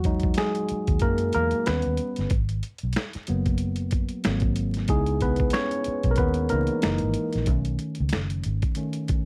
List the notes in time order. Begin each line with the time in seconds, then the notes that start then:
Already playing: E2 F#3 F#4
0.04 F#3 G#3 D#4, kick, closed hi-hat
0.20 kick, closed hi-hat
0.34 G#4, snare, closed hi-hat
0.38 G#3, finger snap
0.55 closed hi-hat
0.69 muted fingered electric bass stroke, closed hi-hat
0.87 D#2, kick, closed hi-hat
0.99 F#2 A#3 A#4, kick, closed hi-hat
1.18 closed hi-hat
1.33 E2 A#3 A#4, closed hi-hat
1.51 closed hi-hat
1.66 D#2 G3 B3 C#4 B4, finger snap, snare, closed hi-hat
1.82 closed hi-hat
1.86 D#2
1.97 closed hi-hat
2.16 G1, snare, closed hi-hat
2.30 G#1, kick, closed hi-hat
2.49 closed hi-hat
2.63 closed hi-hat
2.78 closed hi-hat
2.83 B1
2.93 snare, closed hi-hat
2.97 finger snap
3.13 muted fingered electric bass stroke, snare, closed hi-hat
3.27 F#1 F#3 A#3 B3, closed hi-hat
3.46 kick, closed hi-hat
3.58 closed hi-hat
3.76 closed hi-hat
3.91 kick, closed hi-hat
4.09 closed hi-hat
4.24 G#1 F#3 A#3 C4, finger snap, snare, closed hi-hat
4.40 kick, closed hi-hat
4.56 closed hi-hat
4.74 snare, closed hi-hat
4.88 C#2 G#3 B3 D#4 E4 G#4, kick, closed hi-hat
5.06 closed hi-hat
5.20 B3 B4, kick, closed hi-hat
5.36 kick, closed hi-hat
5.50 C#5, snare, closed hi-hat
5.54 C#4, finger snap
5.71 closed hi-hat
5.84 muted fingered electric bass stroke, closed hi-hat
6.03 B1, kick, closed hi-hat
6.11 A#4
6.16 D#2 B3 B4, kick, closed hi-hat
6.34 closed hi-hat
6.49 C#2 E3 A#3 B3 D#4 A#4, closed hi-hat
6.67 closed hi-hat
6.82 F#1 E3 G#3 A#3 D#4, finger snap, snare, closed hi-hat
6.98 closed hi-hat
7.03 G#1
7.14 closed hi-hat
7.33 A#1, snare, closed hi-hat
7.46 B1 D#3 A3 C#4, kick, closed hi-hat
7.65 closed hi-hat
7.79 closed hi-hat
7.95 closed hi-hat
8.00 C#2
8.09 snare, closed hi-hat
8.13 F#1, finger snap
8.30 closed hi-hat
8.44 G#1, closed hi-hat
8.62 kick, closed hi-hat
8.75 D#3 A3 C#4, closed hi-hat
8.93 closed hi-hat
9.08 kick, closed hi-hat